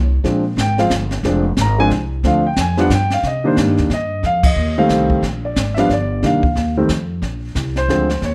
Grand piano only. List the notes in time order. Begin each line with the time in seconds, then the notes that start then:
0.24 F3 G#3 C4 D4
0.61 G5
0.79 F3 G#3 C4 F4 F5
1.25 F3 G#3 C4 D4
1.61 A#5
1.78 F3 G#3 C4 D4 G#5
2.24 F3 A3 C4 D4 F5
2.47 G5
2.60 G#5
2.77 F3 G3 B3 D4 F#5
2.94 G5
3.14 F5
3.27 D#5
3.44 D#3 G3 A#3 D4 C5
3.94 D#5
4.26 F5
4.46 D#5
4.78 D#3 G3 A3 C4 F5
5.45 D5
5.74 F3 G3 B3 D4 E5
5.79 F5
5.89 C#5
5.93 D5
6.23 D#3 G3 A#3 D4 F5
6.77 D#3 G3 A3 C4
7.78 C5
7.89 D3 F3 G#3 C4
8.25 C#5